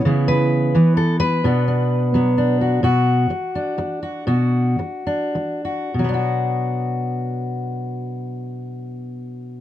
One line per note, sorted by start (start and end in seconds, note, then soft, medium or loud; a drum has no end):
0.00 0.73 E3 medium
0.05 0.74 C#3 medium
0.05 0.75 B3 soft
0.05 1.42 E4 soft
0.28 0.97 B4 loud
0.75 1.44 E3 medium
0.75 1.45 B3 soft
0.97 1.19 A4 medium
1.20 2.61 B4 loud
1.44 2.82 B2 medium
1.44 2.14 B3 soft
1.44 1.67 D4 medium
1.68 2.37 D4 soft
2.14 2.81 F#3 medium
2.14 2.81 B3 soft
2.38 2.81 D4 medium
2.61 2.83 F#4 soft
2.83 3.30 B2 medium
2.83 4.02 F#4 medium
3.30 muted steel-string acoustic guitar stroke medium
3.55 5.06 D4 medium
3.78 muted steel-string acoustic guitar stroke medium
4.03 4.27 F#4 medium
4.27 4.78 B2 medium
4.27 5.63 F#4 medium
4.79 muted steel-string acoustic guitar stroke medium
5.07 5.90 D4 soft
5.35 muted steel-string acoustic guitar stroke medium
5.65 6.13 F#4 soft
5.94 9.61 B2 soft
5.99 9.61 F#3 soft
6.04 9.61 B3 soft
6.09 9.61 D4 soft
6.14 9.61 F#4 soft